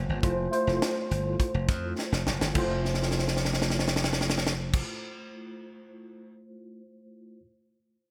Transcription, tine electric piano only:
0.00 0.25 A#3 medium
0.00 0.23 F4 medium
0.00 0.26 G4 medium
0.00 0.24 C5 medium
0.23 0.47 A3 medium
0.23 0.47 E4 medium
0.23 0.47 F4 medium
0.23 0.47 C5 medium
0.51 1.47 A3 medium
0.51 1.48 E4 medium
0.51 1.48 F4 medium
0.51 1.48 C5 medium
2.54 4.81 A3 medium
2.54 4.81 E4 medium
2.54 4.82 F4 medium
2.58 4.83 C5 medium

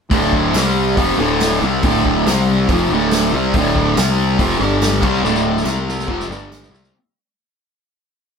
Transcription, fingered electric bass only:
0.11 0.51 D1 medium
0.54 0.94 C2 medium
0.98 1.18 F1 medium
1.18 1.59 D1 medium
1.62 1.82 C2 loud
1.83 2.23 D1 loud
2.26 2.66 C2 loud
2.68 2.89 F1 medium
2.90 3.30 D1 medium
3.33 3.53 C2 loud
3.54 3.94 D1 medium
3.98 4.37 C2 loud
4.39 4.59 F1 medium
4.60 4.99 G1 loud
5.02 5.22 C2 medium
5.22 5.63 D1 medium
5.65 6.05 C2 loud
6.08 6.27 F1 medium
6.28 6.69 G1 loud
6.69 6.91 C2 medium

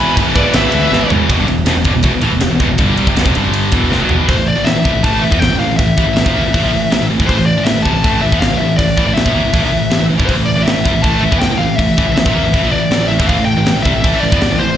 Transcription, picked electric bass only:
0.17 0.29 G#1 medium
0.36 0.48 G#1 medium
0.54 0.67 G#1 loud
0.72 0.85 D2 medium
0.92 1.04 G#1 loud
1.09 1.22 G#2 medium
1.29 1.37 E1 loud
1.38 1.47 G1 loud
1.47 1.65 E1 medium
1.65 1.75 E1 medium
1.75 1.84 E1 medium
1.85 1.94 G1 medium
1.95 2.03 E1 medium
2.04 2.12 E1 medium
2.13 2.22 E1 medium
2.22 2.31 A1 medium
2.32 2.41 E1 medium
2.41 2.50 E1 medium
2.51 2.59 E1 medium
2.60 2.69 E1 medium
2.69 2.78 E1 medium
2.79 2.96 G1 loud
2.98 3.06 C2 loud
3.07 3.15 F1 medium
3.17 3.25 E1 loud
3.26 3.34 F1 medium
3.36 3.70 G1 medium
3.72 3.90 E1 medium
3.92 4.00 F1 medium
4.02 4.10 B1 loud
4.10 4.19 E1 medium
4.20 4.28 B1 medium
4.28 4.37 A1 loud
4.38 4.55 A1 medium
4.56 4.65 A1 medium
4.66 4.74 A1 medium
4.75 4.84 A1 medium
4.85 4.93 C2 medium
4.94 5.03 A1 medium
5.04 5.21 A1 medium
5.22 5.31 A1 medium
5.32 5.40 E2 medium
5.41 5.49 A1 medium
5.50 5.59 A1 medium
5.59 5.77 A1 medium
5.79 5.96 A1 medium
5.98 6.06 A1 medium
6.07 6.16 A1 medium
6.16 6.25 A1 medium
6.26 6.34 A#1 medium
6.36 6.44 D#2 medium
6.46 6.54 A1 medium
6.54 6.63 A1 medium
6.64 6.73 A#1 medium
6.73 6.90 A1 medium
6.92 7.00 A1 medium
7.01 7.10 A1 medium
7.11 7.19 A1 medium
7.20 7.28 A1 loud
7.29 7.38 A1 loud
7.39 7.56 A1 medium
7.58 7.66 A1 medium
7.67 7.76 A1 medium
7.77 7.85 A1 medium
7.86 7.94 C2 medium
7.95 8.03 A1 medium
8.04 8.22 A1 loud
8.22 8.31 A1 medium
8.32 8.40 E2 medium
8.41 8.50 A1 medium
8.50 8.59 A1 medium
8.60 8.78 A1 medium
8.79 8.96 A1 medium
8.98 9.05 A1 medium
9.06 9.15 A1 medium
9.16 9.25 A1 medium
9.26 9.34 A#1 medium
9.35 9.43 D#2 medium
9.44 9.53 A1 medium
9.54 9.63 A1 medium
9.63 9.71 A#1 medium
9.71 9.90 A1 medium
9.91 10.00 A1 medium
10.00 10.09 A1 medium
10.10 10.19 A1 medium
10.20 10.28 A1 medium
10.29 10.38 A1 medium
10.38 10.56 A1 medium
10.57 10.66 A1 medium
10.66 10.75 A1 medium
10.76 10.85 A1 medium
10.86 10.94 C2 loud
10.95 11.03 A1 medium
11.04 11.21 A1 loud
11.23 11.32 A1 medium
11.32 11.41 E2 medium
11.42 11.50 A1 medium
11.50 11.60 A1 medium
11.61 11.78 A1 medium
11.79 11.96 A1 medium
11.98 12.06 A1 loud
12.07 12.15 A1 medium
12.16 12.25 A1 medium
12.26 12.34 A#1 medium
12.35 12.43 D#2 medium
12.44 12.53 A1 medium
12.54 12.62 A1 loud
12.62 12.71 A#1 medium
12.72 12.90 A1 medium
12.91 12.99 A1 medium
13.00 13.08 A1 medium
13.09 13.18 A1 medium
13.20 13.29 A1 loud
13.29 13.37 A1 loud
13.38 13.56 A1 medium
13.57 13.66 A1 medium
13.67 13.75 A1 medium
13.76 13.84 A1 medium
13.85 13.94 C2 medium
13.95 14.03 A1 medium
14.04 14.22 A1 medium
14.23 14.32 A1 medium
14.32 14.41 E2 medium
14.42 14.51 A1 medium
14.51 14.59 A1 medium
14.60 14.77 A1 medium

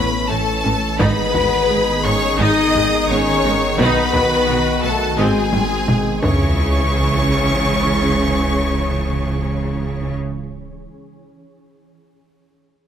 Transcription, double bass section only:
0.30 0.38 A1 medium
0.66 0.74 A1 medium
1.01 1.09 G#1 loud
1.36 1.44 G#1 medium
1.70 1.78 G#1 medium
2.05 2.13 G#1 medium
2.40 2.48 G#1 loud
2.74 2.82 G#1 medium
3.09 3.17 G#1 medium
3.44 3.52 G#1 medium
3.78 3.86 B1 loud
4.13 4.21 B1 medium
4.48 4.56 B1 medium
4.84 4.92 B1 medium
5.18 5.26 G#1 loud
5.53 5.61 G#1 medium
5.88 5.96 G#1 medium
6.23 10.13 C#2 medium

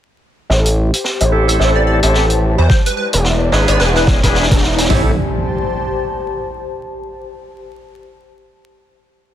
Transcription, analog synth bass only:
0.50 0.91 A1 medium
1.21 1.58 A1 medium
1.60 2.01 A1 medium
2.03 2.56 A1 medium
2.58 2.68 E2 loud
3.14 3.51 E1 loud
3.53 3.66 G#1 medium
3.68 3.78 G#1 loud
3.80 4.21 E1 loud
4.24 4.49 E1 loud
4.51 4.88 E1 loud
4.90 5.16 A1 loud

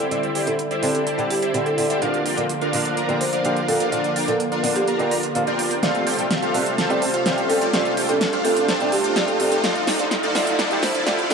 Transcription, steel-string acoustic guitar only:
0.11 0.33 D3 medium
0.11 0.33 G3 medium
0.11 0.34 C4 medium
0.11 0.34 E4 medium
0.46 0.61 D3 medium
0.46 0.61 G3 medium
0.46 0.61 C4 medium
0.46 0.61 E4 medium
0.82 1.05 D3 medium
0.82 1.05 G3 medium
0.82 1.05 C4 medium
0.82 1.05 D4 loud
1.18 1.32 D3 loud
1.18 1.32 G3 medium
1.18 1.32 C4 medium
1.18 1.33 G4 loud
1.54 1.68 D3 medium
1.54 1.68 G3 medium
1.54 1.68 C4 medium
1.54 1.68 G4 medium
1.78 1.98 D3 medium
1.78 1.98 G3 medium
1.78 1.99 C4 medium
1.78 1.99 G4 medium
2.01 2.24 D3 medium
2.01 2.24 F3 medium
2.01 2.24 A#3 medium
2.01 2.24 F4 medium
2.37 2.51 D3 medium
2.37 2.51 F3 medium
2.37 2.51 A#3 medium
2.37 2.52 F4 medium
2.73 2.95 D3 medium
2.73 2.95 F3 medium
2.73 2.96 A#3 medium
2.73 2.96 D4 loud
3.08 3.23 D3 loud
3.08 3.23 F3 medium
3.08 3.23 A#3 medium
3.08 3.23 G4 loud
3.44 3.58 D3 medium
3.44 3.58 F3 medium
3.44 3.59 A#3 medium
3.44 3.59 G4 loud
3.68 3.89 D3 medium
3.68 3.89 F3 medium
3.68 3.89 A#3 medium
3.68 3.89 G4 medium
3.92 4.14 D3 medium
3.92 4.14 F3 medium
3.92 4.15 A#3 medium
3.92 4.15 F4 medium
4.27 4.42 D3 medium
4.27 4.42 F3 medium
4.27 4.42 A#3 medium
4.27 4.42 F4 medium
4.63 4.86 D3 medium
4.63 4.86 F3 medium
4.63 4.86 A#3 medium
4.63 4.86 D4 loud
4.99 5.13 D3 medium
4.99 5.13 F3 medium
4.99 5.13 A#3 medium
4.99 5.14 G4 loud
5.35 5.45 D3 loud
5.35 5.45 F3 medium
5.35 5.46 A#3 medium
5.35 5.46 F4 loud
5.47 5.61 D3 medium
5.47 5.61 F3 medium
5.47 5.61 A#3 medium
5.47 5.61 F4 medium
5.82 6.05 C3 medium
5.82 6.05 G3 medium
5.82 6.05 A3 medium
5.82 6.05 F4 medium
6.18 6.32 C3 medium
6.18 6.32 G3 medium
6.18 6.33 A3 medium
6.18 6.33 F4 medium
6.54 6.76 C3 medium
6.54 6.76 G3 medium
6.54 6.76 A3 medium
6.54 6.77 D4 loud
6.89 7.03 C3 medium
6.89 7.04 G3 medium
6.89 7.04 A3 medium
6.89 7.04 G4 loud
7.25 7.39 C3 medium
7.25 7.39 G3 medium
7.25 7.40 A3 medium
7.25 7.40 G4 loud
7.49 7.70 C3 medium
7.49 7.70 G3 medium
7.49 7.70 A3 medium
7.49 7.70 G4 medium
7.73 7.95 C3 medium
7.73 7.95 G3 medium
7.73 7.96 A3 medium
7.73 7.96 F4 medium
8.08 8.23 C3 medium
8.08 8.23 G3 medium
8.08 8.23 A3 medium
8.08 8.23 F4 medium
8.44 8.67 C3 medium
8.44 8.67 G3 medium
8.44 8.67 A3 medium
8.44 8.67 D4 loud
8.80 8.94 C3 loud
8.80 8.94 G3 medium
8.80 8.94 A3 medium
8.80 8.95 G4 loud
9.16 9.30 C3 medium
9.16 9.30 G3 medium
9.16 9.30 A3 medium
9.16 9.30 G4 loud
9.39 9.60 C3 medium
9.39 9.60 G3 medium
9.39 9.60 A3 medium
9.39 9.61 G4 medium
9.63 9.86 D3 medium
9.63 9.86 F3 medium
9.63 9.86 A3 medium
9.63 9.86 F4 medium
9.99 10.13 D3 medium
9.99 10.13 F3 medium
9.99 10.13 A3 medium
9.99 10.14 F4 medium
10.35 10.57 D3 loud
10.35 10.57 F3 medium
10.35 10.57 A3 medium
10.35 10.58 E4 loud
10.71 10.85 D3 loud
10.71 10.85 F3 medium
10.71 10.85 A3 medium
10.71 10.85 G4 loud
11.06 11.20 D3 medium
11.06 11.20 F3 medium
11.06 11.21 A3 medium
11.06 11.21 G4 loud
11.30 11.34 D3 medium
11.30 11.34 F3 medium
11.30 11.34 A3 medium

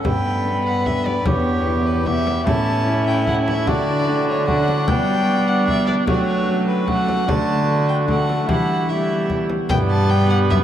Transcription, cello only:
0.05 1.22 G2 medium
1.26 2.49 E2 medium
2.47 3.68 A2 medium
3.67 4.89 D3 medium
4.87 6.07 G3 medium
6.07 7.29 F#3 medium
7.27 8.48 D3 medium
8.49 9.48 E3 medium
9.71 10.52 G2 medium
10.50 10.64 F#2 medium

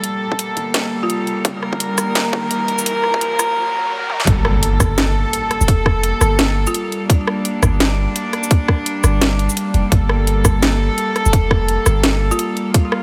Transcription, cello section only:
0.00 4.23 G3 medium
0.00 4.23 A#3 medium
0.00 1.42 A4 medium
1.44 4.24 A#4 medium
4.27 13.03 G3 medium
4.27 13.03 A#3 medium
4.27 7.09 A4 medium
7.09 9.91 D4 medium
9.92 12.73 A4 medium
12.74 13.03 F4 medium

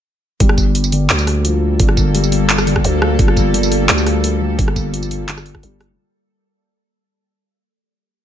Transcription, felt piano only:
0.40 0.57 G3 loud
0.92 1.43 D3 medium
1.45 1.78 F3 medium
1.80 1.96 D3 medium
2.15 2.31 G3 loud
2.67 3.18 D3 medium
3.19 3.53 F3 medium
3.54 3.71 D3 medium
3.89 4.06 G3 loud
4.41 4.92 D3 medium
4.93 5.27 F3 medium
5.28 5.45 D3 medium
5.63 5.80 G3 loud

